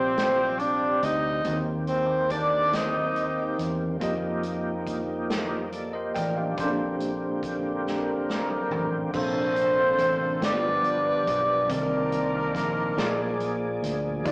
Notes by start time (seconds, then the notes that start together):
Already playing: A#1 A#2 C3 G3 C4 F4 G4 C5
0.17 snare, closed hi-hat
0.59 D4 D5, closed hi-hat
1.03 D2 D#4 D#5, kick, closed hi-hat
1.44 D#2 D#3 A#3 C4 F#4 C5, kick, closed hi-hat
1.51 G4
1.87 C4 C5, closed hi-hat
2.30 D4 D5, kick, closed hi-hat
2.73 D#4 G4 C5 D#5, snare, closed hi-hat
3.16 closed hi-hat
3.58 E2, closed hi-hat
4.00 F2 F3 A#3 D#4 F4 G4 D#5, kick, closed hi-hat
4.43 closed hi-hat
4.87 kick, closed hi-hat
5.30 snare, closed hi-hat
5.72 A4 D5, closed hi-hat
5.93 G4 A#4 C5 D#5
6.15 A1 F4 A#4 D5 G5, kick, closed hi-hat
6.37 D4 G4 C5 F5
6.57 A#1 A#2 D3 A#3 C4 C#4 G4 C5, kick, closed hi-hat
6.64 D4
7.00 closed hi-hat
7.43 kick, closed hi-hat
7.87 A#3 D4 G4 A#4, snare
8.29 snare
8.50 mid tom
8.71 A1, floor tom
9.13 A#1 C3 D3 A#3 C4 D4 F4 A4 C5, kick, crash
9.56 closed hi-hat
9.99 A1, kick, closed hi-hat
10.41 G1 G2 F3 B3 D4 F4 G4 B4 C5 D5, snare, closed hi-hat
10.50 D5
10.84 closed hi-hat
11.27 B1, kick, closed hi-hat
11.69 C2 C3 D#3 A#3 C4 D4 D#4 A#4 D5, kick, closed hi-hat
12.12 closed hi-hat
12.55 A#1, kick, snare, closed hi-hat
12.97 A#1 A#2 F3 A#3 C4 F4 G#4 D5, snare, closed hi-hat
13.04 D5
13.40 closed hi-hat
13.82 D2, closed hi-hat
14.24 D#2 F3 G3 D#4 F4 D5, kick, closed hi-hat